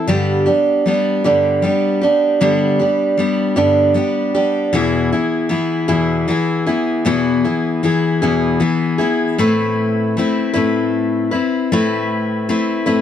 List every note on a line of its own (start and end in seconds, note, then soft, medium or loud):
0.08 0.47 G2 medium
0.08 0.47 D3 medium
0.08 0.47 G3 medium
0.08 0.46 B3 medium
0.08 0.45 D4 medium
0.08 0.45 G4 loud
0.46 0.84 G3 soft
0.46 0.86 B3 soft
0.46 0.86 D4 medium
0.46 0.86 G4 medium
0.86 1.24 G3 medium
0.86 1.24 B3 medium
0.86 1.24 D4 medium
0.86 1.23 G4 medium
1.24 1.65 G2 medium
1.24 1.65 D3 medium
1.24 1.61 G3 medium
1.24 1.62 B3 medium
1.24 1.63 D4 medium
1.24 1.64 G4 medium
1.62 2.02 G3 medium
1.62 2.02 B3 medium
1.62 2.02 D4 medium
1.62 2.00 G4 medium
2.01 2.40 G3 medium
2.01 2.40 B3 medium
2.01 2.41 D4 medium
2.01 2.41 G4 medium
2.41 2.80 G2 medium
2.41 2.80 D3 medium
2.41 2.80 G3 medium
2.41 2.80 B3 medium
2.41 2.79 D4 medium
2.41 2.78 G4 medium
2.79 3.16 G3 soft
2.79 3.18 B3 medium
2.79 3.18 D4 soft
2.79 3.19 G4 medium
3.17 3.56 G3 medium
3.17 3.56 B3 medium
3.17 3.56 D4 medium
3.17 3.55 G4 medium
3.56 3.97 G2 medium
3.56 3.97 D3 medium
3.56 3.93 G3 medium
3.56 3.94 B3 medium
3.56 3.94 D4 medium
3.56 3.96 G4 medium
3.94 4.34 G3 medium
3.94 4.35 B3 medium
3.94 4.33 D4 medium
3.94 4.33 G4 medium
4.35 4.73 G3 soft
4.35 4.73 B3 medium
4.35 4.74 D4 medium
4.35 4.74 G4 medium
4.73 5.12 E2 medium
4.73 5.12 B2 medium
4.73 5.13 E3 medium
4.73 5.13 B3 medium
4.73 5.12 E4 loud
4.73 5.11 G#4 medium
5.12 5.48 E3 soft
5.12 5.48 B3 soft
5.12 5.50 E4 medium
5.12 5.51 G#4 medium
5.49 5.88 E3 medium
5.49 5.88 B3 medium
5.49 5.87 E4 medium
5.49 5.87 G#4 medium
5.88 6.29 E2 medium
5.88 6.28 B2 medium
5.88 6.27 E3 medium
5.88 6.27 B3 medium
5.88 6.28 E4 medium
5.88 6.28 G#4 medium
6.28 6.67 E3 medium
6.28 6.67 B3 medium
6.28 6.66 E4 medium
6.28 6.65 G#4 medium
6.66 7.05 E3 medium
6.66 7.05 B3 medium
6.66 7.05 E4 medium
6.66 7.06 G#4 medium
7.05 7.44 E2 medium
7.05 7.45 B2 medium
7.05 7.45 E3 medium
7.05 7.44 B3 medium
7.05 7.44 E4 medium
7.05 7.43 G#4 medium
7.45 7.82 E3 soft
7.45 7.82 B3 soft
7.45 7.83 E4 medium
7.45 7.84 G#4 medium
7.83 8.22 E3 medium
7.83 8.22 B3 medium
7.83 8.21 E4 medium
7.83 8.21 G#4 medium
8.22 8.62 E2 medium
8.22 8.61 B2 medium
8.22 8.59 E3 medium
8.22 8.59 B3 medium
8.22 8.59 E4 medium
8.22 8.61 G#4 medium
8.60 8.99 E3 medium
8.60 8.99 B3 medium
8.60 8.98 E4 medium
8.60 8.97 G#4 medium
8.98 9.38 E3 soft
8.98 9.39 B3 soft
8.98 9.38 E4 medium
8.98 9.38 G#4 medium
9.38 10.16 A2 medium
9.38 10.16 A3 medium
9.38 10.18 C4 medium
9.38 10.17 E4 medium
9.38 10.17 B4 medium
10.17 10.55 A3 medium
10.17 10.54 C4 medium
10.17 10.53 E4 medium
10.17 10.52 B4 medium
10.53 11.33 A2 medium
10.53 11.34 A3 medium
10.53 11.34 C4 medium
10.53 11.31 E4 medium
10.53 11.30 B4 medium
11.31 11.72 C4 soft
11.31 11.71 E4 medium
11.31 11.70 B4 medium
11.72 12.49 A2 medium
11.72 12.48 A3 medium
11.72 12.49 C4 medium
11.72 12.49 E4 medium
11.72 12.49 B4 medium
12.49 12.86 A3 medium
12.49 12.86 C4 medium
12.49 12.85 E4 medium
12.49 12.85 B4 medium
12.86 13.01 A2 medium
12.86 13.01 A3 medium
12.86 13.01 C4 medium
12.86 13.01 E4 medium
12.86 13.01 B4 medium